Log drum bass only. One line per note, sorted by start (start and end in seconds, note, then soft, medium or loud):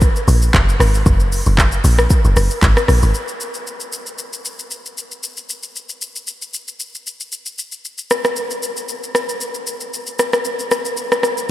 0.00 0.12 G#1 medium
0.28 0.51 A#1 loud
0.54 0.77 F#1 loud
0.80 1.03 G#1 loud
1.06 1.42 F#1 loud
1.47 1.80 F#1 loud
1.84 2.08 A#1 medium
2.25 2.35 F#1 medium
2.37 2.49 F#1 loud
2.62 2.75 G#1 loud
2.89 3.01 A#1 medium
3.03 3.13 G#1 medium